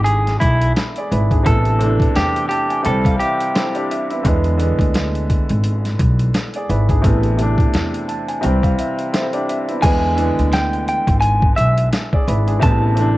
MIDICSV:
0, 0, Header, 1, 5, 480
1, 0, Start_track
1, 0, Tempo, 697674
1, 1002, Time_signature, 4, 2, 24, 8
1, 9065, End_track
2, 0, Start_track
2, 0, Title_t, "Clean electric guitar"
2, 0, Program_c, 0, 27
2, 29, Note_on_c, 0, 68, 83
2, 251, Note_off_c, 0, 68, 0
2, 275, Note_on_c, 0, 64, 82
2, 494, Note_off_c, 0, 64, 0
2, 1007, Note_on_c, 0, 69, 96
2, 1457, Note_off_c, 0, 69, 0
2, 1487, Note_on_c, 0, 67, 93
2, 1701, Note_off_c, 0, 67, 0
2, 1712, Note_on_c, 0, 67, 83
2, 1932, Note_off_c, 0, 67, 0
2, 1965, Note_on_c, 0, 69, 83
2, 2180, Note_off_c, 0, 69, 0
2, 2198, Note_on_c, 0, 67, 69
2, 2892, Note_off_c, 0, 67, 0
2, 6759, Note_on_c, 0, 80, 114
2, 7213, Note_off_c, 0, 80, 0
2, 7247, Note_on_c, 0, 79, 88
2, 7461, Note_off_c, 0, 79, 0
2, 7490, Note_on_c, 0, 79, 73
2, 7702, Note_off_c, 0, 79, 0
2, 7709, Note_on_c, 0, 80, 83
2, 7931, Note_off_c, 0, 80, 0
2, 7956, Note_on_c, 0, 76, 83
2, 8175, Note_off_c, 0, 76, 0
2, 8687, Note_on_c, 0, 81, 97
2, 9065, Note_off_c, 0, 81, 0
2, 9065, End_track
3, 0, Start_track
3, 0, Title_t, "Upright piano"
3, 0, Program_c, 1, 0
3, 0, Control_c, 1, 64, 127
3, 0, Note_on_c, 1, 50, 85
3, 0, Note_on_c, 1, 52, 76
3, 0, Note_on_c, 1, 56, 76
3, 0, Note_on_c, 1, 59, 89
3, 0, Note_on_c, 1, 64, 68
3, 213, Note_off_c, 1, 50, 0
3, 218, Note_off_c, 1, 52, 0
3, 223, Note_off_c, 1, 56, 0
3, 228, Note_off_c, 1, 59, 0
3, 672, Note_on_c, 1, 74, 67
3, 676, Note_on_c, 1, 68, 58
3, 763, Note_off_c, 1, 74, 0
3, 765, Note_off_c, 1, 68, 0
3, 765, Note_on_c, 1, 71, 71
3, 770, Note_off_c, 1, 64, 0
3, 770, Note_on_c, 1, 64, 64
3, 896, Note_off_c, 1, 71, 0
3, 898, Note_off_c, 1, 64, 0
3, 903, Note_on_c, 1, 68, 67
3, 906, Note_on_c, 1, 62, 55
3, 986, Note_on_c, 1, 48, 83
3, 998, Note_on_c, 1, 52, 75
3, 1008, Note_on_c, 1, 57, 84
3, 1011, Control_c, 1, 64, 0
3, 1018, Note_on_c, 1, 59, 90
3, 1116, Control_c, 1, 64, 127
3, 1130, Note_off_c, 1, 68, 0
3, 1132, Note_off_c, 1, 62, 0
3, 1219, Note_off_c, 1, 48, 0
3, 1224, Note_off_c, 1, 52, 0
3, 1229, Note_off_c, 1, 57, 0
3, 1229, Note_on_c, 1, 48, 84
3, 1235, Note_off_c, 1, 59, 0
3, 1240, Note_on_c, 1, 52, 79
3, 1251, Note_on_c, 1, 57, 77
3, 1262, Note_on_c, 1, 62, 90
3, 1721, Note_on_c, 1, 81, 70
3, 1851, Note_off_c, 1, 81, 0
3, 1861, Note_on_c, 1, 80, 66
3, 1935, Note_off_c, 1, 48, 0
3, 1946, Note_off_c, 1, 52, 0
3, 1946, Note_on_c, 1, 48, 86
3, 1954, Note_off_c, 1, 80, 0
3, 1956, Note_on_c, 1, 52, 77
3, 1961, Note_on_c, 1, 79, 76
3, 1966, Note_off_c, 1, 57, 0
3, 1966, Note_on_c, 1, 55, 75
3, 1970, Control_c, 1, 64, 0
3, 1972, Note_off_c, 1, 62, 0
3, 1977, Note_on_c, 1, 60, 90
3, 2082, Control_c, 1, 64, 127
3, 2091, Note_off_c, 1, 79, 0
3, 2103, Note_on_c, 1, 77, 74
3, 2178, Note_off_c, 1, 48, 0
3, 2184, Note_off_c, 1, 52, 0
3, 2189, Note_off_c, 1, 55, 0
3, 2194, Note_off_c, 1, 60, 0
3, 2196, Note_off_c, 1, 77, 0
3, 2207, Note_on_c, 1, 76, 76
3, 2428, Note_off_c, 1, 76, 0
3, 2443, Note_on_c, 1, 72, 69
3, 2444, Note_on_c, 1, 69, 65
3, 2447, Note_on_c, 1, 64, 56
3, 2572, Note_off_c, 1, 72, 0
3, 2575, Note_off_c, 1, 69, 0
3, 2577, Note_off_c, 1, 64, 0
3, 2582, Note_on_c, 1, 67, 72
3, 2582, Note_on_c, 1, 74, 68
3, 2586, Note_on_c, 1, 62, 62
3, 2675, Note_off_c, 1, 74, 0
3, 2684, Note_on_c, 1, 76, 73
3, 2810, Note_off_c, 1, 67, 0
3, 2812, Note_off_c, 1, 62, 0
3, 2827, Note_on_c, 1, 64, 69
3, 2831, Note_on_c, 1, 59, 54
3, 2906, Note_off_c, 1, 76, 0
3, 2909, Note_on_c, 1, 50, 85
3, 2920, Note_on_c, 1, 52, 81
3, 2931, Note_off_c, 1, 59, 0
3, 2931, Note_on_c, 1, 56, 81
3, 2932, Control_c, 1, 64, 0
3, 2941, Note_on_c, 1, 59, 97
3, 3052, Note_off_c, 1, 64, 0
3, 3055, Control_c, 1, 64, 127
3, 3135, Note_off_c, 1, 50, 0
3, 3145, Note_off_c, 1, 52, 0
3, 3146, Note_on_c, 1, 50, 83
3, 3151, Note_off_c, 1, 56, 0
3, 3156, Note_off_c, 1, 59, 0
3, 3156, Note_on_c, 1, 52, 77
3, 3168, Note_on_c, 1, 56, 75
3, 3177, Note_on_c, 1, 59, 92
3, 4052, Note_off_c, 1, 50, 0
3, 4057, Note_off_c, 1, 52, 0
3, 4063, Note_off_c, 1, 56, 0
3, 4068, Note_off_c, 1, 59, 0
3, 4512, Note_on_c, 1, 74, 67
3, 4516, Note_on_c, 1, 68, 59
3, 4603, Note_off_c, 1, 74, 0
3, 4605, Note_off_c, 1, 68, 0
3, 4605, Note_on_c, 1, 71, 73
3, 4609, Note_on_c, 1, 64, 62
3, 4736, Note_off_c, 1, 71, 0
3, 4738, Note_off_c, 1, 64, 0
3, 4740, Note_on_c, 1, 68, 67
3, 4746, Note_on_c, 1, 62, 54
3, 4826, Note_on_c, 1, 48, 85
3, 4837, Note_on_c, 1, 52, 75
3, 4847, Note_on_c, 1, 57, 87
3, 4852, Control_c, 1, 64, 0
3, 4858, Note_on_c, 1, 59, 95
3, 4953, Control_c, 1, 64, 127
3, 4969, Note_off_c, 1, 68, 0
3, 4971, Note_off_c, 1, 62, 0
3, 5058, Note_off_c, 1, 48, 0
3, 5064, Note_off_c, 1, 52, 0
3, 5069, Note_off_c, 1, 57, 0
3, 5070, Note_on_c, 1, 48, 81
3, 5074, Note_off_c, 1, 59, 0
3, 5080, Note_on_c, 1, 52, 77
3, 5091, Note_on_c, 1, 57, 75
3, 5101, Note_on_c, 1, 62, 90
3, 5560, Note_on_c, 1, 81, 70
3, 5690, Note_off_c, 1, 81, 0
3, 5698, Note_on_c, 1, 80, 67
3, 5775, Note_off_c, 1, 48, 0
3, 5784, Note_off_c, 1, 52, 0
3, 5785, Note_on_c, 1, 48, 90
3, 5793, Note_off_c, 1, 80, 0
3, 5795, Note_on_c, 1, 52, 78
3, 5800, Note_on_c, 1, 79, 71
3, 5806, Note_off_c, 1, 57, 0
3, 5806, Note_on_c, 1, 55, 73
3, 5810, Control_c, 1, 64, 0
3, 5812, Note_off_c, 1, 62, 0
3, 5816, Note_on_c, 1, 60, 93
3, 5931, Note_off_c, 1, 79, 0
3, 5936, Control_c, 1, 64, 127
3, 5942, Note_on_c, 1, 77, 70
3, 6018, Note_off_c, 1, 48, 0
3, 6023, Note_off_c, 1, 52, 0
3, 6028, Note_off_c, 1, 55, 0
3, 6034, Note_off_c, 1, 60, 0
3, 6035, Note_off_c, 1, 77, 0
3, 6047, Note_on_c, 1, 76, 72
3, 6268, Note_off_c, 1, 76, 0
3, 6282, Note_on_c, 1, 69, 65
3, 6282, Note_on_c, 1, 72, 70
3, 6287, Note_on_c, 1, 64, 56
3, 6411, Note_off_c, 1, 72, 0
3, 6414, Note_off_c, 1, 69, 0
3, 6417, Note_off_c, 1, 64, 0
3, 6420, Note_on_c, 1, 74, 66
3, 6421, Note_on_c, 1, 67, 67
3, 6424, Note_on_c, 1, 62, 62
3, 6514, Note_off_c, 1, 74, 0
3, 6523, Note_on_c, 1, 76, 72
3, 6649, Note_off_c, 1, 67, 0
3, 6651, Note_off_c, 1, 62, 0
3, 6664, Note_on_c, 1, 64, 68
3, 6668, Note_on_c, 1, 59, 54
3, 6746, Note_off_c, 1, 76, 0
3, 6748, Note_on_c, 1, 50, 83
3, 6758, Note_on_c, 1, 52, 78
3, 6769, Note_on_c, 1, 56, 81
3, 6770, Note_off_c, 1, 59, 0
3, 6771, Control_c, 1, 64, 0
3, 6780, Note_on_c, 1, 59, 100
3, 6891, Note_off_c, 1, 64, 0
3, 6908, Control_c, 1, 64, 127
3, 6975, Note_off_c, 1, 50, 0
3, 6984, Note_off_c, 1, 52, 0
3, 6986, Note_on_c, 1, 50, 90
3, 6990, Note_off_c, 1, 56, 0
3, 6995, Note_off_c, 1, 59, 0
3, 6997, Note_on_c, 1, 52, 80
3, 7007, Note_on_c, 1, 56, 77
3, 7018, Note_on_c, 1, 59, 93
3, 7892, Note_off_c, 1, 50, 0
3, 7897, Note_off_c, 1, 52, 0
3, 7903, Note_off_c, 1, 56, 0
3, 7908, Note_off_c, 1, 59, 0
3, 8351, Note_on_c, 1, 74, 67
3, 8355, Note_on_c, 1, 68, 59
3, 8442, Note_off_c, 1, 74, 0
3, 8444, Note_off_c, 1, 68, 0
3, 8445, Note_on_c, 1, 71, 70
3, 8449, Note_on_c, 1, 64, 65
3, 8576, Note_off_c, 1, 71, 0
3, 8578, Note_off_c, 1, 64, 0
3, 8580, Note_on_c, 1, 68, 68
3, 8584, Note_on_c, 1, 62, 57
3, 8664, Note_on_c, 1, 48, 90
3, 8673, Note_on_c, 1, 52, 79
3, 8684, Note_on_c, 1, 57, 90
3, 8692, Control_c, 1, 64, 0
3, 8696, Note_on_c, 1, 59, 94
3, 8809, Note_off_c, 1, 68, 0
3, 8811, Note_off_c, 1, 62, 0
3, 8825, Control_c, 1, 64, 127
3, 8896, Note_off_c, 1, 48, 0
3, 8902, Note_off_c, 1, 52, 0
3, 8907, Note_on_c, 1, 48, 87
3, 8908, Note_off_c, 1, 57, 0
3, 8913, Note_off_c, 1, 59, 0
3, 8918, Note_on_c, 1, 52, 80
3, 8928, Note_on_c, 1, 57, 80
3, 8939, Note_on_c, 1, 62, 91
3, 9065, Note_off_c, 1, 48, 0
3, 9065, Note_off_c, 1, 52, 0
3, 9065, Note_off_c, 1, 57, 0
3, 9065, Note_off_c, 1, 62, 0
3, 9065, End_track
4, 0, Start_track
4, 0, Title_t, "Upright bass"
4, 0, Program_c, 2, 32
4, 0, Note_on_c, 2, 32, 91
4, 230, Note_off_c, 2, 32, 0
4, 288, Note_on_c, 2, 35, 92
4, 486, Note_off_c, 2, 35, 0
4, 768, Note_on_c, 2, 32, 92
4, 966, Note_off_c, 2, 32, 0
4, 1006, Note_on_c, 2, 33, 108
4, 1406, Note_off_c, 2, 33, 0
4, 1487, Note_on_c, 2, 40, 86
4, 1686, Note_off_c, 2, 40, 0
4, 1967, Note_on_c, 2, 36, 103
4, 2166, Note_off_c, 2, 36, 0
4, 2925, Note_on_c, 2, 40, 113
4, 3242, Note_off_c, 2, 40, 0
4, 3297, Note_on_c, 2, 38, 85
4, 3701, Note_off_c, 2, 38, 0
4, 3785, Note_on_c, 2, 32, 93
4, 4069, Note_off_c, 2, 32, 0
4, 4127, Note_on_c, 2, 35, 93
4, 4326, Note_off_c, 2, 35, 0
4, 4605, Note_on_c, 2, 32, 93
4, 4805, Note_off_c, 2, 32, 0
4, 4846, Note_on_c, 2, 33, 109
4, 5246, Note_off_c, 2, 33, 0
4, 5327, Note_on_c, 2, 40, 85
4, 5526, Note_off_c, 2, 40, 0
4, 5806, Note_on_c, 2, 36, 98
4, 6005, Note_off_c, 2, 36, 0
4, 6766, Note_on_c, 2, 40, 110
4, 7082, Note_off_c, 2, 40, 0
4, 7147, Note_on_c, 2, 38, 83
4, 7547, Note_off_c, 2, 38, 0
4, 7621, Note_on_c, 2, 32, 94
4, 7907, Note_off_c, 2, 32, 0
4, 7966, Note_on_c, 2, 35, 96
4, 8166, Note_off_c, 2, 35, 0
4, 8446, Note_on_c, 2, 32, 94
4, 8645, Note_off_c, 2, 32, 0
4, 8685, Note_on_c, 2, 33, 110
4, 9065, Note_off_c, 2, 33, 0
4, 9065, End_track
5, 0, Start_track
5, 0, Title_t, "Drums"
5, 40, Note_on_c, 9, 42, 89
5, 109, Note_off_c, 9, 42, 0
5, 187, Note_on_c, 9, 42, 56
5, 188, Note_on_c, 9, 38, 30
5, 256, Note_off_c, 9, 42, 0
5, 257, Note_off_c, 9, 38, 0
5, 284, Note_on_c, 9, 36, 94
5, 285, Note_on_c, 9, 42, 84
5, 353, Note_off_c, 9, 36, 0
5, 354, Note_off_c, 9, 42, 0
5, 423, Note_on_c, 9, 42, 61
5, 492, Note_off_c, 9, 42, 0
5, 526, Note_on_c, 9, 42, 100
5, 529, Note_on_c, 9, 38, 125
5, 595, Note_off_c, 9, 42, 0
5, 598, Note_off_c, 9, 38, 0
5, 659, Note_on_c, 9, 42, 52
5, 728, Note_off_c, 9, 42, 0
5, 771, Note_on_c, 9, 42, 76
5, 840, Note_off_c, 9, 42, 0
5, 901, Note_on_c, 9, 36, 94
5, 904, Note_on_c, 9, 42, 46
5, 970, Note_off_c, 9, 36, 0
5, 973, Note_off_c, 9, 42, 0
5, 1003, Note_on_c, 9, 36, 118
5, 1004, Note_on_c, 9, 42, 112
5, 1072, Note_off_c, 9, 36, 0
5, 1073, Note_off_c, 9, 42, 0
5, 1137, Note_on_c, 9, 42, 51
5, 1206, Note_off_c, 9, 42, 0
5, 1243, Note_on_c, 9, 42, 78
5, 1312, Note_off_c, 9, 42, 0
5, 1374, Note_on_c, 9, 36, 94
5, 1389, Note_on_c, 9, 42, 47
5, 1443, Note_off_c, 9, 36, 0
5, 1458, Note_off_c, 9, 42, 0
5, 1483, Note_on_c, 9, 42, 92
5, 1491, Note_on_c, 9, 38, 123
5, 1552, Note_off_c, 9, 42, 0
5, 1559, Note_off_c, 9, 38, 0
5, 1625, Note_on_c, 9, 42, 55
5, 1694, Note_off_c, 9, 42, 0
5, 1726, Note_on_c, 9, 42, 69
5, 1795, Note_off_c, 9, 42, 0
5, 1860, Note_on_c, 9, 42, 57
5, 1929, Note_off_c, 9, 42, 0
5, 1959, Note_on_c, 9, 42, 90
5, 2028, Note_off_c, 9, 42, 0
5, 2099, Note_on_c, 9, 36, 99
5, 2105, Note_on_c, 9, 42, 55
5, 2167, Note_off_c, 9, 36, 0
5, 2174, Note_off_c, 9, 42, 0
5, 2204, Note_on_c, 9, 42, 83
5, 2273, Note_off_c, 9, 42, 0
5, 2342, Note_on_c, 9, 42, 60
5, 2411, Note_off_c, 9, 42, 0
5, 2445, Note_on_c, 9, 42, 103
5, 2448, Note_on_c, 9, 38, 121
5, 2514, Note_off_c, 9, 42, 0
5, 2517, Note_off_c, 9, 38, 0
5, 2579, Note_on_c, 9, 42, 52
5, 2648, Note_off_c, 9, 42, 0
5, 2692, Note_on_c, 9, 42, 74
5, 2760, Note_off_c, 9, 42, 0
5, 2824, Note_on_c, 9, 42, 48
5, 2893, Note_off_c, 9, 42, 0
5, 2923, Note_on_c, 9, 36, 110
5, 2924, Note_on_c, 9, 42, 110
5, 2992, Note_off_c, 9, 36, 0
5, 2992, Note_off_c, 9, 42, 0
5, 3057, Note_on_c, 9, 42, 50
5, 3126, Note_off_c, 9, 42, 0
5, 3162, Note_on_c, 9, 42, 74
5, 3231, Note_off_c, 9, 42, 0
5, 3294, Note_on_c, 9, 36, 97
5, 3309, Note_on_c, 9, 42, 46
5, 3363, Note_off_c, 9, 36, 0
5, 3377, Note_off_c, 9, 42, 0
5, 3402, Note_on_c, 9, 42, 89
5, 3409, Note_on_c, 9, 38, 119
5, 3471, Note_off_c, 9, 42, 0
5, 3478, Note_off_c, 9, 38, 0
5, 3544, Note_on_c, 9, 42, 52
5, 3613, Note_off_c, 9, 42, 0
5, 3645, Note_on_c, 9, 36, 102
5, 3646, Note_on_c, 9, 42, 72
5, 3714, Note_off_c, 9, 36, 0
5, 3714, Note_off_c, 9, 42, 0
5, 3780, Note_on_c, 9, 42, 60
5, 3848, Note_off_c, 9, 42, 0
5, 3878, Note_on_c, 9, 42, 86
5, 3947, Note_off_c, 9, 42, 0
5, 4026, Note_on_c, 9, 42, 55
5, 4027, Note_on_c, 9, 38, 30
5, 4094, Note_off_c, 9, 42, 0
5, 4096, Note_off_c, 9, 38, 0
5, 4124, Note_on_c, 9, 36, 90
5, 4124, Note_on_c, 9, 42, 81
5, 4192, Note_off_c, 9, 36, 0
5, 4192, Note_off_c, 9, 42, 0
5, 4261, Note_on_c, 9, 42, 62
5, 4330, Note_off_c, 9, 42, 0
5, 4365, Note_on_c, 9, 42, 100
5, 4368, Note_on_c, 9, 38, 121
5, 4434, Note_off_c, 9, 42, 0
5, 4436, Note_off_c, 9, 38, 0
5, 4498, Note_on_c, 9, 42, 51
5, 4567, Note_off_c, 9, 42, 0
5, 4610, Note_on_c, 9, 42, 74
5, 4678, Note_off_c, 9, 42, 0
5, 4740, Note_on_c, 9, 36, 91
5, 4744, Note_on_c, 9, 42, 48
5, 4809, Note_off_c, 9, 36, 0
5, 4813, Note_off_c, 9, 42, 0
5, 4843, Note_on_c, 9, 36, 118
5, 4844, Note_on_c, 9, 42, 111
5, 4912, Note_off_c, 9, 36, 0
5, 4913, Note_off_c, 9, 42, 0
5, 4976, Note_on_c, 9, 42, 51
5, 5045, Note_off_c, 9, 42, 0
5, 5082, Note_on_c, 9, 42, 76
5, 5151, Note_off_c, 9, 42, 0
5, 5214, Note_on_c, 9, 36, 97
5, 5228, Note_on_c, 9, 42, 47
5, 5283, Note_off_c, 9, 36, 0
5, 5297, Note_off_c, 9, 42, 0
5, 5323, Note_on_c, 9, 42, 96
5, 5330, Note_on_c, 9, 38, 115
5, 5391, Note_off_c, 9, 42, 0
5, 5399, Note_off_c, 9, 38, 0
5, 5464, Note_on_c, 9, 42, 52
5, 5533, Note_off_c, 9, 42, 0
5, 5565, Note_on_c, 9, 42, 69
5, 5634, Note_off_c, 9, 42, 0
5, 5700, Note_on_c, 9, 42, 58
5, 5769, Note_off_c, 9, 42, 0
5, 5799, Note_on_c, 9, 42, 89
5, 5868, Note_off_c, 9, 42, 0
5, 5939, Note_on_c, 9, 36, 98
5, 5946, Note_on_c, 9, 42, 55
5, 6008, Note_off_c, 9, 36, 0
5, 6015, Note_off_c, 9, 42, 0
5, 6045, Note_on_c, 9, 42, 84
5, 6114, Note_off_c, 9, 42, 0
5, 6182, Note_on_c, 9, 42, 59
5, 6251, Note_off_c, 9, 42, 0
5, 6286, Note_on_c, 9, 42, 104
5, 6289, Note_on_c, 9, 38, 121
5, 6355, Note_off_c, 9, 42, 0
5, 6358, Note_off_c, 9, 38, 0
5, 6419, Note_on_c, 9, 42, 51
5, 6488, Note_off_c, 9, 42, 0
5, 6530, Note_on_c, 9, 42, 74
5, 6599, Note_off_c, 9, 42, 0
5, 6664, Note_on_c, 9, 42, 47
5, 6732, Note_off_c, 9, 42, 0
5, 6761, Note_on_c, 9, 49, 96
5, 6763, Note_on_c, 9, 36, 114
5, 6764, Note_on_c, 9, 42, 113
5, 6830, Note_off_c, 9, 49, 0
5, 6832, Note_off_c, 9, 36, 0
5, 6833, Note_off_c, 9, 42, 0
5, 7003, Note_on_c, 9, 42, 77
5, 7071, Note_off_c, 9, 42, 0
5, 7148, Note_on_c, 9, 42, 47
5, 7217, Note_off_c, 9, 42, 0
5, 7242, Note_on_c, 9, 42, 97
5, 7250, Note_on_c, 9, 38, 123
5, 7311, Note_off_c, 9, 42, 0
5, 7318, Note_off_c, 9, 38, 0
5, 7384, Note_on_c, 9, 42, 37
5, 7453, Note_off_c, 9, 42, 0
5, 7485, Note_on_c, 9, 42, 72
5, 7554, Note_off_c, 9, 42, 0
5, 7618, Note_on_c, 9, 36, 98
5, 7620, Note_on_c, 9, 42, 59
5, 7687, Note_off_c, 9, 36, 0
5, 7689, Note_off_c, 9, 42, 0
5, 7720, Note_on_c, 9, 42, 91
5, 7789, Note_off_c, 9, 42, 0
5, 7859, Note_on_c, 9, 36, 102
5, 7928, Note_off_c, 9, 36, 0
5, 7965, Note_on_c, 9, 42, 82
5, 8034, Note_off_c, 9, 42, 0
5, 8102, Note_on_c, 9, 42, 62
5, 8171, Note_off_c, 9, 42, 0
5, 8206, Note_on_c, 9, 42, 102
5, 8208, Note_on_c, 9, 38, 123
5, 8274, Note_off_c, 9, 42, 0
5, 8277, Note_off_c, 9, 38, 0
5, 8344, Note_on_c, 9, 36, 97
5, 8413, Note_off_c, 9, 36, 0
5, 8451, Note_on_c, 9, 42, 77
5, 8520, Note_off_c, 9, 42, 0
5, 8584, Note_on_c, 9, 42, 50
5, 8653, Note_off_c, 9, 42, 0
5, 8683, Note_on_c, 9, 36, 117
5, 8683, Note_on_c, 9, 42, 107
5, 8752, Note_off_c, 9, 36, 0
5, 8752, Note_off_c, 9, 42, 0
5, 8922, Note_on_c, 9, 42, 78
5, 8991, Note_off_c, 9, 42, 0
5, 9065, End_track
0, 0, End_of_file